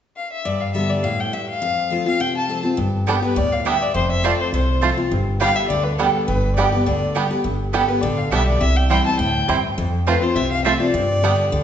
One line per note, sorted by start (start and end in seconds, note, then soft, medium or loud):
0.16 0.31 F5 medium
0.32 0.47 E5 medium
0.45 1.01 G2 medium
0.45 0.62 D5 medium
0.61 0.74 F5 medium
0.74 1.02 D3 medium
0.74 1.02 G3 medium
0.74 1.03 B3 medium
0.74 1.03 G4 medium
0.74 0.91 E5 medium
0.90 1.05 D5 medium
1.04 1.31 A2 medium
1.04 1.22 F5 medium
1.20 1.35 G5 medium
1.33 1.61 G2 medium
1.33 1.48 E5 medium
1.49 2.03 F5 loud
1.62 2.17 F2 medium
1.90 2.06 F3 medium
1.90 2.06 A3 medium
1.90 2.06 C4 medium
1.90 2.05 F4 medium
2.06 2.20 C4 soft
2.06 2.19 F4 medium
2.06 2.22 F5 loud
2.20 2.76 C3 medium
2.20 2.36 G5 loud
2.37 2.63 A5 medium
2.48 2.64 F3 medium
2.48 2.64 A3 medium
2.48 2.64 C4 medium
2.48 2.62 F4 medium
2.63 2.78 C4 soft
2.63 2.77 F4 medium
2.77 3.15 G1 medium
2.77 3.33 G2 medium
3.07 3.22 D3 medium
3.07 3.23 G3 medium
3.07 3.15 G3 medium
3.07 3.17 B3 medium
3.07 3.23 B3 medium
3.07 3.15 B3 medium
3.07 3.15 D4 medium
3.07 3.17 G4 medium
3.07 3.21 G4 medium
3.07 3.15 A4 medium
3.07 3.17 D5 medium
3.07 3.17 G5 loud
3.22 3.37 B3 medium
3.22 3.36 G4 medium
3.22 3.39 B4 medium
3.36 3.73 D2 medium
3.36 3.64 A2 medium
3.36 3.54 D5 loud
3.53 3.68 F5 medium
3.65 3.93 G2 medium
3.65 3.73 G3 medium
3.65 3.75 B3 medium
3.65 3.73 B3 medium
3.65 3.73 D4 medium
3.65 3.75 G4 medium
3.65 3.76 D5 medium
3.65 3.84 E5 medium
3.65 3.76 G5 medium
3.82 3.95 D5 loud
3.94 4.31 F1 medium
3.94 4.50 F2 medium
3.94 4.10 C5 loud
4.11 4.27 E5 medium
4.23 4.51 F3 medium
4.23 4.52 A3 medium
4.23 4.31 A3 medium
4.23 4.33 C4 medium
4.23 4.52 C4 medium
4.23 4.31 C4 medium
4.23 4.34 F4 medium
4.23 4.52 F4 medium
4.23 4.32 F4 medium
4.23 4.34 C5 medium
4.23 4.40 D5 loud
4.23 4.34 A5 loud
4.41 4.53 C5 medium
4.53 4.89 C2 medium
4.53 5.09 C3 medium
4.53 4.95 C5 medium
4.81 4.97 F3 medium
4.81 4.97 A3 medium
4.81 4.89 A3 medium
4.81 4.91 C4 medium
4.81 4.98 C4 medium
4.81 4.90 C4 medium
4.81 4.92 F4 medium
4.81 4.96 F4 medium
4.81 4.90 F4 medium
4.81 4.92 C5 loud
4.81 4.92 A5 medium
4.97 5.12 C4 soft
4.97 5.11 F4 medium
5.11 5.48 G1 loud
5.11 5.67 G2 medium
5.40 5.68 D3 medium
5.40 5.69 G3 medium
5.40 5.48 G3 medium
5.40 5.50 B3 medium
5.40 5.48 B3 medium
5.40 5.69 B3 medium
5.40 5.48 D4 medium
5.40 5.50 G4 medium
5.40 5.69 G4 medium
5.40 5.50 D5 loud
5.40 5.57 F5 loud
5.40 5.50 G5 loud
5.55 5.67 E5 medium
5.68 6.06 D2 medium
5.68 5.97 D3 medium
5.68 5.85 D5 medium
5.84 5.97 B4 medium
5.97 6.26 D3 soft
5.97 6.06 G3 medium
5.97 6.27 G3 medium
5.97 6.08 B3 medium
5.97 6.27 B3 medium
5.97 6.06 B3 medium
5.97 6.06 D4 medium
5.97 6.09 G4 medium
5.97 6.27 G4 medium
5.97 6.25 A4 medium
5.97 6.09 D5 medium
5.97 6.09 G5 loud
6.27 6.65 G1 loud
6.27 6.83 G2 medium
6.27 6.54 B4 medium
6.56 6.72 D3 medium
6.56 6.72 G3 medium
6.56 6.64 G3 medium
6.56 6.67 B3 medium
6.56 6.73 B3 medium
6.56 6.65 B3 medium
6.56 6.65 D4 medium
6.56 6.67 G4 medium
6.56 6.71 G4 medium
6.56 6.83 D5 medium
6.56 6.67 D5 medium
6.56 6.67 G5 loud
6.72 6.87 B3 soft
6.72 6.85 G4 medium
6.85 7.23 D2 medium
6.85 7.13 D3 medium
6.85 7.27 D5 medium
7.15 7.30 D3 soft
7.15 7.22 G3 medium
7.15 7.31 G3 medium
7.15 7.25 B3 medium
7.15 7.31 B3 medium
7.15 7.23 B3 medium
7.15 7.23 D4 medium
7.15 7.25 G4 medium
7.15 7.30 G4 medium
7.15 7.25 D5 loud
7.15 7.25 G5 medium
7.31 7.45 B3 soft
7.31 7.44 G4 medium
7.44 7.81 G1 medium
7.44 8.00 G2 medium
7.73 7.88 D3 medium
7.73 7.88 G3 medium
7.73 7.81 G3 medium
7.73 7.83 B3 medium
7.73 7.81 B3 medium
7.73 7.89 B3 medium
7.73 7.81 D4 medium
7.73 7.83 G4 medium
7.73 7.87 G4 medium
7.73 7.90 A4 medium
7.73 7.83 D5 medium
7.73 7.83 G5 loud
7.88 8.03 B3 medium
7.88 8.02 G4 medium
7.88 8.03 B4 medium
8.01 8.27 A1 medium
8.01 8.30 D3 loud
8.01 8.19 D5 medium
8.17 8.31 F5 medium
8.31 8.56 B1 medium
8.31 8.59 D3 medium
8.31 8.60 G3 medium
8.31 8.39 G3 medium
8.31 8.41 B3 medium
8.31 8.60 B3 medium
8.31 8.39 B3 medium
8.31 8.39 D4 medium
8.31 8.42 G4 medium
8.31 8.60 G4 medium
8.31 8.42 D5 loud
8.31 8.46 E5 medium
8.31 8.42 G5 medium
8.47 8.62 D5 medium
8.61 8.98 C2 loud
8.61 9.16 C3 medium
8.61 8.78 E5 loud
8.76 8.90 G5 medium
8.89 9.04 E3 medium
8.89 9.05 G3 medium
8.89 8.97 G3 medium
8.89 9.00 C4 medium
8.89 9.05 C4 medium
8.89 8.97 C4 medium
8.89 9.00 E4 medium
8.89 9.04 E4 medium
8.89 8.98 E4 medium
8.89 9.00 C5 medium
8.89 9.05 G5 loud
8.89 9.00 G5 medium
9.05 9.19 C4 soft
9.05 9.18 E4 medium
9.05 9.18 A5 loud
9.19 9.44 D2 medium
9.19 9.47 A2 medium
9.19 9.61 G5 loud
9.48 9.73 E2 medium
9.48 9.76 G2 medium
9.48 9.56 G3 medium
9.48 9.58 C4 medium
9.48 9.56 C4 medium
9.48 9.58 E4 medium
9.48 9.56 E4 medium
9.48 9.58 C5 medium
9.48 9.58 G5 medium
9.78 10.33 F2 medium
9.78 10.15 F2 medium
10.07 10.22 F3 medium
10.07 10.22 A3 medium
10.07 10.14 A3 medium
10.07 10.16 C4 medium
10.07 10.22 C4 medium
10.07 10.14 C4 medium
10.07 10.17 F4 medium
10.07 10.14 F4 medium
10.07 10.21 F4 medium
10.07 10.24 B4 medium
10.07 10.17 C5 loud
10.07 10.17 A5 loud
10.22 10.36 C4 medium
10.22 10.35 F4 medium
10.22 10.37 C5 medium
10.36 10.72 C2 medium
10.36 10.91 C3 medium
10.36 10.51 E5 loud
10.51 10.64 F5 loud
10.64 10.80 F3 medium
10.64 10.80 A3 medium
10.64 10.72 A3 medium
10.64 10.75 C4 medium
10.64 10.81 C4 medium
10.64 10.73 C4 medium
10.64 10.75 F4 medium
10.64 10.73 F4 medium
10.64 10.79 F4 medium
10.64 10.75 C5 loud
10.64 10.79 E5 medium
10.64 10.75 A5 medium
10.80 10.94 C4 soft
10.80 10.93 F4 medium
10.80 11.63 D5 loud
10.94 11.31 G2 medium
10.94 11.50 G2 medium
11.23 11.51 D3 medium
11.23 11.31 G3 medium
11.23 11.51 G3 medium
11.23 11.33 B3 loud
11.23 11.31 B3 medium
11.23 11.52 B3 medium
11.23 11.31 D4 medium
11.23 11.33 G4 medium
11.23 11.52 G4 medium
11.23 11.33 D5 loud
11.23 11.34 G5 medium
11.52 11.63 D2 medium
11.52 11.63 D3 medium